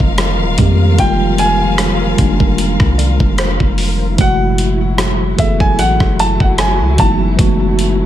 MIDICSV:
0, 0, Header, 1, 7, 480
1, 0, Start_track
1, 0, Tempo, 800000
1, 592, Time_signature, 4, 2, 24, 8
1, 4834, End_track
2, 0, Start_track
2, 0, Title_t, "Grand piano"
2, 0, Program_c, 0, 0
2, 0, Note_on_c, 0, 75, 86
2, 597, Note_on_c, 0, 79, 106
2, 631, Note_off_c, 0, 75, 0
2, 835, Note_on_c, 0, 80, 111
2, 842, Note_off_c, 0, 79, 0
2, 2250, Note_off_c, 0, 80, 0
2, 2524, Note_on_c, 0, 78, 100
2, 3235, Note_on_c, 0, 76, 86
2, 3260, Note_off_c, 0, 78, 0
2, 3354, Note_off_c, 0, 76, 0
2, 3363, Note_on_c, 0, 80, 103
2, 3475, Note_on_c, 0, 78, 102
2, 3476, Note_off_c, 0, 80, 0
2, 3719, Note_on_c, 0, 81, 108
2, 3721, Note_off_c, 0, 78, 0
2, 3837, Note_off_c, 0, 81, 0
2, 3848, Note_on_c, 0, 78, 86
2, 3878, Note_off_c, 0, 78, 0
2, 3957, Note_on_c, 0, 80, 99
2, 4198, Note_on_c, 0, 81, 99
2, 4202, Note_off_c, 0, 80, 0
2, 4834, Note_off_c, 0, 81, 0
2, 4834, End_track
3, 0, Start_track
3, 0, Title_t, "Synth pluck"
3, 0, Program_c, 1, 84
3, 1789, Note_on_c, 1, 74, 52
3, 2031, Note_on_c, 1, 72, 67
3, 2727, Note_off_c, 1, 74, 0
3, 2728, Note_off_c, 1, 72, 0
3, 4834, End_track
4, 0, Start_track
4, 0, Title_t, "String section"
4, 0, Program_c, 2, 48
4, 0, Note_on_c, 2, 53, 75
4, 0, Note_on_c, 2, 65, 74
4, 0, Note_on_c, 2, 70, 72
4, 0, Note_on_c, 2, 77, 82
4, 2488, Note_off_c, 2, 53, 0
4, 2488, Note_off_c, 2, 65, 0
4, 2489, Note_off_c, 2, 70, 0
4, 2489, Note_off_c, 2, 77, 0
4, 2510, Note_on_c, 2, 54, 77
4, 2511, Note_on_c, 2, 66, 72
4, 2512, Note_on_c, 2, 64, 72
4, 4834, Note_off_c, 2, 54, 0
4, 4834, Note_off_c, 2, 64, 0
4, 4834, Note_off_c, 2, 66, 0
4, 4834, End_track
5, 0, Start_track
5, 0, Title_t, "Tine electric piano"
5, 0, Program_c, 3, 4
5, 0, Control_c, 3, 64, 127
5, 0, Note_on_c, 3, 50, 79
5, 0, Note_on_c, 3, 51, 72
5, 0, Note_on_c, 3, 55, 64
5, 0, Note_on_c, 3, 56, 65
5, 0, Note_on_c, 3, 58, 65
5, 0, Note_on_c, 3, 61, 65
5, 69, Note_off_c, 3, 51, 0
5, 72, Note_off_c, 3, 55, 0
5, 76, Note_off_c, 3, 56, 0
5, 79, Note_off_c, 3, 58, 0
5, 101, Note_off_c, 3, 50, 0
5, 341, Note_on_c, 3, 51, 85
5, 348, Note_on_c, 3, 55, 77
5, 354, Note_on_c, 3, 56, 77
5, 360, Note_on_c, 3, 58, 77
5, 367, Note_on_c, 3, 67, 90
5, 522, Note_off_c, 3, 51, 0
5, 526, Note_off_c, 3, 55, 0
5, 528, Note_off_c, 3, 56, 0
5, 531, Note_off_c, 3, 58, 0
5, 535, Note_off_c, 3, 67, 0
5, 582, Note_on_c, 3, 51, 89
5, 589, Note_on_c, 3, 55, 81
5, 595, Note_on_c, 3, 56, 77
5, 600, Note_on_c, 3, 58, 79
5, 606, Note_on_c, 3, 65, 99
5, 1099, Note_off_c, 3, 51, 0
5, 1102, Note_off_c, 3, 55, 0
5, 1105, Note_off_c, 3, 56, 0
5, 1108, Note_off_c, 3, 58, 0
5, 1111, Note_off_c, 3, 65, 0
5, 1302, Note_on_c, 3, 51, 72
5, 1308, Note_on_c, 3, 55, 71
5, 1315, Note_on_c, 3, 56, 67
5, 1320, Note_on_c, 3, 58, 67
5, 1326, Note_on_c, 3, 62, 82
5, 1990, Note_off_c, 3, 51, 0
5, 1993, Note_off_c, 3, 55, 0
5, 1996, Note_off_c, 3, 56, 0
5, 1999, Note_off_c, 3, 58, 0
5, 2002, Note_off_c, 3, 62, 0
5, 2504, Note_on_c, 3, 52, 90
5, 2510, Note_on_c, 3, 56, 82
5, 2517, Note_on_c, 3, 57, 83
5, 2519, Note_off_c, 3, 61, 0
5, 2519, Control_c, 3, 64, 0
5, 2522, Note_on_c, 3, 47, 84
5, 2529, Note_on_c, 3, 66, 99
5, 2621, Control_c, 3, 64, 127
5, 3020, Note_off_c, 3, 52, 0
5, 3023, Note_off_c, 3, 56, 0
5, 3026, Note_off_c, 3, 57, 0
5, 3029, Note_off_c, 3, 47, 0
5, 3033, Note_off_c, 3, 66, 0
5, 3220, Note_on_c, 3, 52, 78
5, 3227, Note_on_c, 3, 68, 67
5, 3233, Note_on_c, 3, 57, 69
5, 3240, Note_on_c, 3, 59, 67
5, 3245, Note_on_c, 3, 69, 82
5, 3909, Note_off_c, 3, 52, 0
5, 3912, Note_off_c, 3, 68, 0
5, 3915, Note_off_c, 3, 57, 0
5, 3919, Note_off_c, 3, 59, 0
5, 3921, Note_off_c, 3, 69, 0
5, 4179, Note_on_c, 3, 52, 70
5, 4186, Note_on_c, 3, 56, 66
5, 4193, Note_on_c, 3, 57, 65
5, 4199, Note_on_c, 3, 59, 61
5, 4205, Note_on_c, 3, 63, 81
5, 4361, Note_off_c, 3, 52, 0
5, 4365, Note_off_c, 3, 56, 0
5, 4368, Note_off_c, 3, 57, 0
5, 4371, Note_off_c, 3, 59, 0
5, 4374, Note_off_c, 3, 63, 0
5, 4418, Note_on_c, 3, 52, 92
5, 4425, Note_on_c, 3, 56, 79
5, 4430, Note_on_c, 3, 57, 87
5, 4437, Note_on_c, 3, 59, 86
5, 4443, Note_on_c, 3, 66, 105
5, 4834, Note_off_c, 3, 52, 0
5, 4834, Note_off_c, 3, 56, 0
5, 4834, Note_off_c, 3, 57, 0
5, 4834, Note_off_c, 3, 59, 0
5, 4834, Note_off_c, 3, 66, 0
5, 4834, End_track
6, 0, Start_track
6, 0, Title_t, "808-style bass"
6, 0, Program_c, 4, 38
6, 1, Note_on_c, 4, 29, 98
6, 242, Note_on_c, 4, 27, 96
6, 251, Note_off_c, 4, 29, 0
6, 347, Note_off_c, 4, 27, 0
6, 351, Note_on_c, 4, 41, 110
6, 582, Note_off_c, 4, 41, 0
6, 591, Note_on_c, 4, 29, 109
6, 1288, Note_off_c, 4, 29, 0
6, 1312, Note_on_c, 4, 29, 95
6, 1667, Note_off_c, 4, 29, 0
6, 1682, Note_on_c, 4, 36, 94
6, 1912, Note_off_c, 4, 36, 0
6, 1922, Note_on_c, 4, 29, 101
6, 2152, Note_off_c, 4, 29, 0
6, 2162, Note_on_c, 4, 29, 104
6, 2498, Note_off_c, 4, 29, 0
6, 2511, Note_on_c, 4, 30, 108
6, 3208, Note_off_c, 4, 30, 0
6, 3233, Note_on_c, 4, 30, 99
6, 3470, Note_on_c, 4, 33, 100
6, 3479, Note_off_c, 4, 30, 0
6, 3594, Note_off_c, 4, 33, 0
6, 3601, Note_on_c, 4, 30, 94
6, 3832, Note_off_c, 4, 30, 0
6, 3842, Note_on_c, 4, 30, 99
6, 4081, Note_on_c, 4, 37, 102
6, 4090, Note_off_c, 4, 30, 0
6, 4186, Note_off_c, 4, 37, 0
6, 4193, Note_on_c, 4, 30, 110
6, 4423, Note_off_c, 4, 30, 0
6, 4431, Note_on_c, 4, 30, 116
6, 4834, Note_off_c, 4, 30, 0
6, 4834, End_track
7, 0, Start_track
7, 0, Title_t, "Drums"
7, 0, Note_on_c, 9, 36, 97
7, 60, Note_off_c, 9, 36, 0
7, 107, Note_on_c, 9, 42, 65
7, 109, Note_on_c, 9, 37, 98
7, 167, Note_off_c, 9, 42, 0
7, 169, Note_off_c, 9, 37, 0
7, 347, Note_on_c, 9, 42, 65
7, 351, Note_on_c, 9, 36, 94
7, 407, Note_off_c, 9, 42, 0
7, 411, Note_off_c, 9, 36, 0
7, 591, Note_on_c, 9, 36, 108
7, 591, Note_on_c, 9, 42, 68
7, 651, Note_off_c, 9, 36, 0
7, 651, Note_off_c, 9, 42, 0
7, 831, Note_on_c, 9, 42, 63
7, 891, Note_off_c, 9, 42, 0
7, 1069, Note_on_c, 9, 37, 110
7, 1073, Note_on_c, 9, 42, 72
7, 1129, Note_off_c, 9, 37, 0
7, 1133, Note_off_c, 9, 42, 0
7, 1310, Note_on_c, 9, 42, 61
7, 1312, Note_on_c, 9, 36, 87
7, 1370, Note_off_c, 9, 42, 0
7, 1372, Note_off_c, 9, 36, 0
7, 1441, Note_on_c, 9, 36, 94
7, 1501, Note_off_c, 9, 36, 0
7, 1550, Note_on_c, 9, 42, 66
7, 1610, Note_off_c, 9, 42, 0
7, 1679, Note_on_c, 9, 37, 67
7, 1681, Note_on_c, 9, 36, 98
7, 1739, Note_off_c, 9, 37, 0
7, 1741, Note_off_c, 9, 36, 0
7, 1794, Note_on_c, 9, 42, 60
7, 1854, Note_off_c, 9, 42, 0
7, 1921, Note_on_c, 9, 36, 100
7, 1981, Note_off_c, 9, 36, 0
7, 2029, Note_on_c, 9, 42, 69
7, 2031, Note_on_c, 9, 37, 104
7, 2089, Note_off_c, 9, 42, 0
7, 2091, Note_off_c, 9, 37, 0
7, 2161, Note_on_c, 9, 36, 85
7, 2221, Note_off_c, 9, 36, 0
7, 2268, Note_on_c, 9, 46, 68
7, 2328, Note_off_c, 9, 46, 0
7, 2510, Note_on_c, 9, 42, 68
7, 2511, Note_on_c, 9, 36, 111
7, 2570, Note_off_c, 9, 42, 0
7, 2571, Note_off_c, 9, 36, 0
7, 2750, Note_on_c, 9, 42, 65
7, 2810, Note_off_c, 9, 42, 0
7, 2990, Note_on_c, 9, 37, 105
7, 2994, Note_on_c, 9, 42, 71
7, 3050, Note_off_c, 9, 37, 0
7, 3054, Note_off_c, 9, 42, 0
7, 3231, Note_on_c, 9, 42, 63
7, 3232, Note_on_c, 9, 36, 82
7, 3291, Note_off_c, 9, 42, 0
7, 3292, Note_off_c, 9, 36, 0
7, 3362, Note_on_c, 9, 36, 93
7, 3422, Note_off_c, 9, 36, 0
7, 3472, Note_on_c, 9, 42, 67
7, 3532, Note_off_c, 9, 42, 0
7, 3602, Note_on_c, 9, 36, 96
7, 3603, Note_on_c, 9, 37, 62
7, 3662, Note_off_c, 9, 36, 0
7, 3663, Note_off_c, 9, 37, 0
7, 3717, Note_on_c, 9, 42, 58
7, 3777, Note_off_c, 9, 42, 0
7, 3842, Note_on_c, 9, 36, 95
7, 3902, Note_off_c, 9, 36, 0
7, 3949, Note_on_c, 9, 42, 65
7, 3951, Note_on_c, 9, 37, 102
7, 4009, Note_off_c, 9, 42, 0
7, 4011, Note_off_c, 9, 37, 0
7, 4189, Note_on_c, 9, 42, 67
7, 4192, Note_on_c, 9, 36, 97
7, 4249, Note_off_c, 9, 42, 0
7, 4252, Note_off_c, 9, 36, 0
7, 4432, Note_on_c, 9, 36, 111
7, 4434, Note_on_c, 9, 42, 70
7, 4492, Note_off_c, 9, 36, 0
7, 4494, Note_off_c, 9, 42, 0
7, 4672, Note_on_c, 9, 42, 65
7, 4732, Note_off_c, 9, 42, 0
7, 4834, End_track
0, 0, End_of_file